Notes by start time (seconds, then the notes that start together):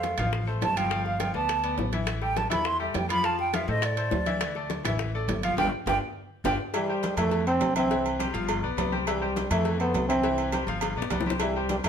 Already playing: F2 A3 A4 C5 F5
0.03 high bongo, high conga, high timbale, low timbale
0.18 A1 F3 F4 F5, high bongo, high conga, low conga, high timbale
0.33 high bongo, high conga
0.47 A3 A4 C5, high conga
0.61 G1 A5, high bongo, low bongo, high conga, high timbale, low timbale
0.76 F3 F4 F5 G5, high bongo, high conga, high timbale
0.90 F3 F4 F5, high bongo, high conga
1.06 F5, high bongo, high conga
1.20 F3 F4 F5 G5, high bongo, high conga, high timbale, low timbale
1.34 D2 B3 B4 D5 A5, high bongo, high conga
1.49 high bongo, high conga, high timbale
1.63 B3 B4 D5, high conga, high timbale
1.78 A1, high bongo, low bongo, high conga, low timbale
1.92 E3 E4 E5, high bongo, high conga, high timbale
2.07 high bongo, high conga, high timbale
2.22 G3 G4 A4 G5, high bongo, high conga
2.36 A5, high bongo, high conga, high timbale, low timbale
2.50 E2 E3 E4 E5 B5, high bongo, high conga, low conga, high timbale
2.65 C6, high bongo, high conga
2.80 G3 G4 A4 E5, high conga
2.94 F2 G5, high bongo, low bongo, high conga, high timbale, low timbale
3.09 F3 F4 F5 B5, high bongo, high conga, high timbale
3.23 F3 F4 F5 A5, high bongo
3.39 G5, high bongo, high conga
3.53 F3 F4 E5 F5, high bongo, high conga, high timbale, low timbale
3.68 A2 A3 A4 C5 D#5, high bongo, high conga
3.82 D5, high bongo, high conga, high timbale
3.97 A3 A4 C5, high conga, high timbale
4.11 D2, high bongo, low bongo, high conga, low timbale
4.26 E3 E4 E5, high bongo, high conga, high timbale
4.41 high bongo, high conga, high timbale
4.55 A3 A4 D5, high bongo, high conga
4.70 high bongo, high conga, high timbale, low timbale
4.84 A1 E3 E4 E5, high bongo, high conga, low conga, high timbale
4.99 high bongo, high conga, low conga
5.15 A3 A4 D5, high conga
5.28 G1, high bongo, low bongo, high conga, high timbale, low timbale
5.43 F3 F4 F5, high bongo, high conga, high timbale
5.57 G1 D4 F4 G4 G5, high bongo, low conga, high timbale
5.86 G1 D4 F4 G4 G5, high bongo, low conga, high timbale
6.44 G1 D4 F4 G4 G5, high bongo, low conga, high timbale
6.74 E3 G3 E4 E5, cowbell, high conga, low agogo
6.89 G3 G4 C5, high conga
7.03 cowbell, high conga, low timbale, low agogo
7.17 F2 E3 A3 E4 E5, cowbell, high conga, low conga, low agogo
7.31 cowbell, high conga
7.47 A3 C4 A4 C5, high conga, low agogo
7.61 C2, cowbell, high conga, low timbale, low agogo
7.76 E3 C4 E4 E5, high conga, low agogo
7.90 E3 E4 E5, cowbell, high conga
8.06 high conga, low agogo
8.19 G3 G4 C5, cowbell, high conga, low timbale, low agogo
8.33 G1 F3 F4 F5, cowbell, high conga
8.49 cowbell, high conga, low agogo
8.63 B1 B3 B4 D5, high conga
8.77 C2 B3 B4 D5, cowbell, high conga, low timbale, low agogo
8.92 G3 G4 C5, high conga
9.07 E3 G3 E4 E5, cowbell, high conga, low agogo
9.22 G3 G4 C5, high conga
9.36 cowbell, high conga, low timbale, low agogo
9.51 F2 E3 A3 E4 E5, cowbell, high conga, low conga, low agogo
9.65 cowbell, high conga
9.80 A3 B3 A4 C5, low agogo
9.94 C2, cowbell, high conga, low timbale, low agogo
10.08 E3 C4 E4 E5, high conga, low agogo
10.23 E3 E4 E5, cowbell, high conga
10.38 high conga, low agogo
10.52 G3 G4 C5, cowbell, high conga, low timbale, low agogo
10.67 G1 F3 F4 F5, cowbell, high conga
10.81 cowbell, high bongo, high conga, low agogo
10.96 B1 B3 B4 D5, high conga
11.02 high bongo
11.10 C2 B3 B4 D5, cowbell, high conga, low timbale, low agogo
11.21 low bongo
11.26 G3 G4 C5, high conga
11.30 low bongo
11.40 E3 G3 E4 E5, cowbell, high conga, low agogo
11.55 G3 G4 C5, high conga
11.69 G3, cowbell, high conga, low timbale, low agogo
11.84 F2, cowbell, high conga, low conga, low agogo